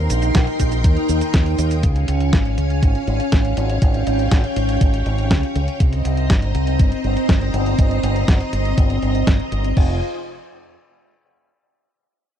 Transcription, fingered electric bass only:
0.10 A#1
0.35 A#1
0.60 A#1
0.84 D#2
1.09 D#2
1.34 D#2
1.59 D#2
1.84 C#2
2.08 C#2
2.33 G#1
2.58 C#2
2.83 G#1
3.07 G#1
3.32 G#1
3.57 G#1
3.82 G#1
4.07 G#1
4.32 G#1
4.56 G#1
4.81 G#1
5.06 G#1
5.31 C#2
5.56 C#2
5.80 C2
6.05 C2
6.30 G1
6.55 C2
6.79 G1
7.04 G1
7.29 G1
7.54 G1
7.79 G1
8.03 G1
8.28 G1
8.53 G1
8.78 G1
9.02 G1
9.27 G1
9.52 G1
9.77 F1

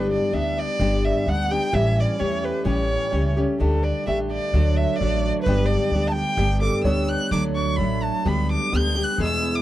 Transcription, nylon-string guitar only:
Already playing: G2 D3 G3 B3 D4 G4
0.33 G3 B3 D4 G4
0.80 G2 D3 G3 B3 D4 G4
1.27 G3 B3 D4 G4
1.51 G3 B3 D4 G4
1.72 A2 E3 G3 C#4 G4
2.18 E3 G3 C#4 G4
2.65 A2 E3 G3 C#4 G4
3.10 E3 G3 C#4 G4
3.37 G3 C#4 G4
3.60 D3 A3 D4 G4
4.06 D3 A3 D4 G4
4.54 D3 A3 D4 F#4
5.00 D3 A3 D4 F#4
5.47 G2 D3 G3 B3 D4 G4
5.94 G3 B3 D4 G4
6.37 G2 D3 G3 B3 D4 G4
6.84 G3 B3 D4 G4
7.31 D3 F#3 A3 D4 F#4
7.78 F#3 A3 D4 F#4
8.25 D3 G3 B3 G4
8.72 D3 G3 B3 G4
8.97 G3 B3 G4
9.19 E2 B2 E3 G#3 B3 G#4

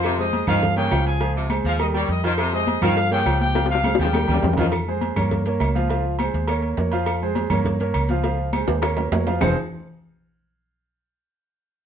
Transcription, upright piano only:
Already playing: F3 F4 F5
0.18 G#3 G#4 C5
0.48 F3 F4 F5
0.76 A#3 A#4 C#5
0.91 F3 F4 F5
1.20 F3 F4 F5
1.50 G#3 G#4 C5
1.80 G3 G4 A#4
1.94 G3 G4 A#4
2.24 F3 F4 F5
2.53 G#3 G#4 C5
2.82 F3 F4 F5
3.11 A#3 A#4 C#5
3.26 F3 F4 F5
3.55 F3 F4 F5
3.85 G#3 G#4 C5
4.14 G3 G4 A#4
4.29 G3 G4 A#4
4.59 F3 F4 F5
4.88 G#3 G#4 C5
5.17 A#3 A#4 C#5
5.47 A#3 A#4 C#5
5.75 F3 F4 F5
5.90 F3 F4 F5
6.20 G#3 G#4 C5
6.49 A#3 A#4 C#5
6.78 A#3 A#4 C#5
6.93 F3 F4 F5
7.22 G#3 G#4 C5
7.51 A#3 A#4 C#5
7.80 A#3 A#4 C#5
8.10 F3 F4 F5
8.24 F3 F4 F5
8.54 G#3 G#4 C5
8.83 A#3 A#4 C#5
9.12 A#3 A#4 C#5
9.27 F3 F4 F5
9.41 F3 C4 D#4 F4 G#4 C5

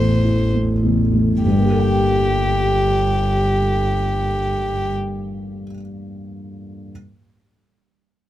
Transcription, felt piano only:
Already playing: A1 E2 A3 E4 A4
0.24 E4
0.55 A3
0.83 E2
1.13 A3
1.44 G2
1.51 G3
1.58 A#3
1.66 G4
1.72 A4
1.79 G5

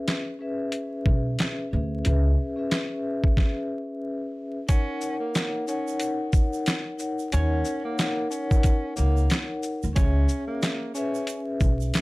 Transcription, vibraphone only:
Already playing: C#4 G#4 B4 E5
0.39 C#4 G#4 B4 E5
1.71 C#4 G#4 B4 E5
2.04 C#4 G#4 B4 E5
2.56 C#4 G#4 B4 E5
2.70 C#4 G#4 B4 E5
4.67 D#4 A#4 C#5 F#5
5.67 D#4 A#4 C#5 F#5
6.97 D#4 A#4 C#5 F#5
7.33 D#4 A#4 C#5 F#5
7.81 D#4 A#4 C#5 F#5
7.99 D#4 A#4 C#5 F#5
9.93 C#4 G#4 C#5 E5
10.94 C#4 G#4 B4 E5

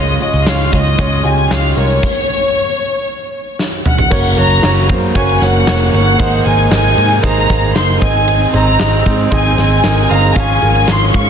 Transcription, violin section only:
Already playing: D#5
0.22 D#5
0.48 F5
0.73 D#5
1.25 G#5
1.51 F5
1.77 C#5
3.86 F#5
4.37 A#5
5.17 G#5
5.43 F#5
5.95 F#5
6.46 G#5
6.72 G#5
7.24 A#5
7.76 C6
8.02 G#5
8.55 A#5
9.34 G#5
9.59 G#5
10.11 A#5
10.37 G#5
10.89 C6
11.14 C#6

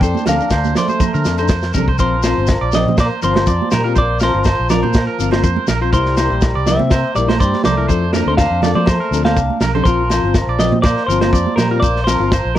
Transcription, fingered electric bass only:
0.01 F2
0.27 D2
0.50 D2
1.15 D3
1.25 F2
1.74 C2
1.99 A#1
2.38 G1
2.61 A#1
2.86 A#2
3.23 G1
3.47 F2
3.73 A#2
3.96 A#1
4.34 G1
4.60 A#1
4.84 A#2
5.20 G1
5.44 F2
5.69 A#1
5.92 C2
6.30 A#1
6.55 C2
6.80 C3
7.16 A#1
7.41 G2
7.66 C2
7.89 F2
8.26 D2
8.50 F2
8.75 F3
9.11 D2
9.36 C2
9.61 B1
9.85 A#1
10.23 G1
10.47 A#1
10.71 A#2
11.08 G1
11.33 F2
11.57 A#2
11.82 A#1
12.20 G1
12.45 A#1

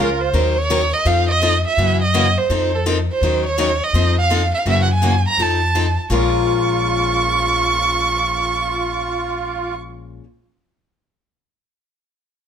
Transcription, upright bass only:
Already playing: C#2
0.33 D#2
1.05 F2
1.77 F#2
2.49 F2
3.21 D#2
3.93 F2
4.66 F#2
5.37 F2
6.10 A#1

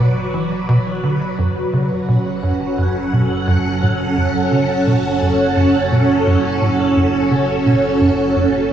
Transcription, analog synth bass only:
0.00 B2
0.34 E3
0.69 B2
1.03 D3
1.38 F#2
1.73 C#3
2.08 B2
2.43 F#2
2.78 F#2
3.13 B2
3.47 F#2
3.82 A2
4.17 F#2
4.52 C#3
4.87 B2
5.22 F#2
5.57 F#2
5.92 B2
6.27 F#2
6.61 A2
6.97 F#2
7.31 C#3
7.66 B2
8.01 F#2
8.36 F#2

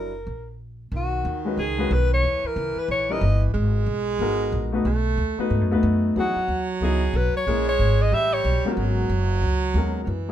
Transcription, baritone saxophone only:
0.93 D#3
2.24 E3
3.54 G#3
4.86 A3
6.17 F#3
7.47 G#3
8.13 G3
8.73 F3
8.77 F#3
10.04 F#3
10.08 E3

